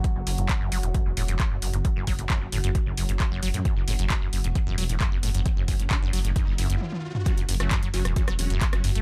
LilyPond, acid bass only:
\new Staff \with { instrumentName = "Acid bass" } { \clef bass \time 4/4 \key fis \minor \tempo 4 = 133 fis,16 fis,16 fis,16 gis,16 cis16 fis,16 fis16 a,16 fis,16 fis,16 a,16 fis,16 fis,16 fis,16 fis,16 gis,16 | cis16 fis,16 fis16 a,16 fis,16 fis,16 a,16 fis,16 fis,16 fis,16 fis,16 gis,16 cis16 fis,16 fis16 a,16 | fis,16 fis,16 a,16 fis,16 fis,16 fis,16 fis,16 gis,16 cis16 fis,16 fis16 a,16 fis,16 fis,16 a,16 fis,16 | fis,16 fis,16 fis,16 gis,16 cis16 fis,16 fis16 a,16 fis,16 fis,16 fis,16 fis,16 r4 |
fis,16 fis,16 fis,16 a16 fis,16 fis16 fis,16 fis,16 e,16 fis16 fis,,16 fis,16 fis,16 fis,16 fis,16 a16 | }